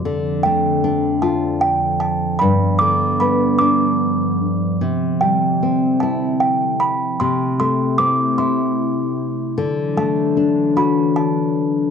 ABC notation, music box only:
X:1
M:6/8
L:1/8
Q:3/8=51
K:Ddor
V:1 name="Music box"
z g2 a g a | b d' b d'2 z | z g2 a g b | c' c' d' c'2 z |
z a2 b a2 |]